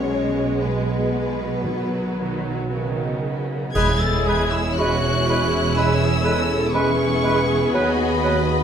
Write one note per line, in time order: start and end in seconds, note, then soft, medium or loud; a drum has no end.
0.00 3.54 B1 medium
0.00 0.50 B2 medium
0.00 1.60 G#3 medium
0.00 0.60 C#4 medium
0.00 0.58 C#5 medium
0.08 0.34 G#3 soft
0.35 0.61 B3 soft
0.60 2.13 B2 medium
0.60 0.87 G#3 soft
0.60 2.70 B3 medium
0.60 2.70 B4 medium
0.86 1.12 B3 soft
1.12 1.38 G#3 soft
1.39 1.63 B3 soft
1.64 3.19 B2 medium
1.64 3.55 F#3 medium
1.64 1.89 B3 medium
1.91 2.16 B3 soft
2.17 2.70 D#3 medium
2.17 2.42 B3 soft
2.43 2.67 B3 soft
2.68 3.73 C#3 medium
2.68 3.54 D#3 medium
2.68 2.94 B3 medium
2.95 3.22 B3 soft
3.24 3.48 B3 soft
3.49 3.75 B3 soft
3.75 7.69 E1 medium
3.75 5.25 E2 medium
3.75 7.70 E2 medium
3.75 3.91 G#3 medium
3.75 4.74 G#3 medium
3.75 8.63 B3 medium
3.75 4.74 E4 medium
3.75 4.02 G#4 medium
3.75 4.74 G#4 medium
3.75 7.70 G#4 medium
3.75 3.92 B4 medium
3.75 6.70 C#5 medium
3.75 3.87 B5 medium
3.75 3.99 G#6 medium
3.75 concert bass drum medium
3.75 crash medium
4.00 4.28 A4 medium
4.00 4.27 A6 medium
4.26 4.43 G#3 medium
4.26 4.53 G#4 medium
4.26 4.44 B4 medium
4.26 4.40 B5 medium
4.26 4.52 G#6 medium
4.51 4.80 E4 medium
4.51 4.78 E6 medium
4.78 4.96 G#3 medium
4.78 6.70 C#4 medium
4.78 6.74 E4 medium
4.78 5.76 F#4 medium
4.78 5.29 F#4 medium
4.78 4.96 B4 medium
4.78 4.90 B5 medium
4.78 5.77 F#6 medium
5.29 5.46 G#3 soft
5.29 5.77 E4 medium
5.29 5.45 B4 medium
5.29 5.40 B5 soft
5.76 5.94 G#3 medium
5.76 6.76 E4 medium
5.76 6.26 G#4 medium
5.76 5.93 B4 medium
5.76 5.88 B5 medium
5.76 6.73 E6 medium
6.24 6.42 G#3 medium
6.24 6.74 A4 medium
6.24 6.40 B4 medium
6.24 6.36 B5 medium
6.74 6.91 G#3 medium
6.74 8.63 B3 medium
6.74 7.72 C#4 medium
6.74 7.72 E4 medium
6.74 8.63 G#4 medium
6.74 6.90 B4 medium
6.74 7.74 B4 medium
6.74 6.85 B5 medium
6.74 7.73 C#6 medium
7.23 7.39 G#3 medium
7.23 7.40 B4 medium
7.23 7.35 B5 medium
7.73 8.63 D#2 medium
7.73 7.90 F#3 medium
7.73 8.63 B3 medium
7.73 8.63 F#4 medium
7.73 8.25 F#4 medium
7.73 7.90 B4 medium
7.73 8.63 D#5 medium
7.73 8.63 B5 medium
7.73 7.85 B5 medium
8.24 8.40 F#3 medium
8.24 8.40 B4 medium
8.24 8.63 B4 medium
8.24 8.35 B5 medium